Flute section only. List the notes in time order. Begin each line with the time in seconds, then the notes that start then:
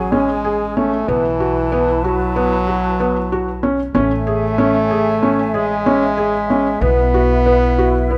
Already playing: C#4 G#4 G#5
1.08 E4 B4 A5
3.94 C#5 E5 G#5
6.81 E4 B4